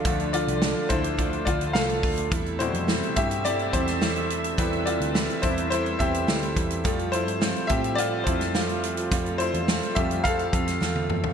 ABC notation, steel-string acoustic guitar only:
X:1
M:4/4
L:1/8
Q:1/4=106
K:Am
V:1 name="Steel-string acoustic guitar"
[D,A,DFA]2 [D,A,DFA] [DFA] [A,DFA] [DFA] [D,A,DFA]2 | [E,G,CEA]2 [E,G,CEA] [CEA] [G,CEA] [CEA] [E,G,CEA]2 | [E,G,CEA]2 [E,G,CEA] [CEA] [G,CEA] [CEA] [E,G,CEA]2 | [F,G,CFA]2 [F,G,CFA] [CFA] [G,CFA] [CFA] [F,G,CFA]2 |
[F,G,CFA]2 [F,G,CFA] [CFA] [G,CFA] [CFA] [F,G,CFA]2 |]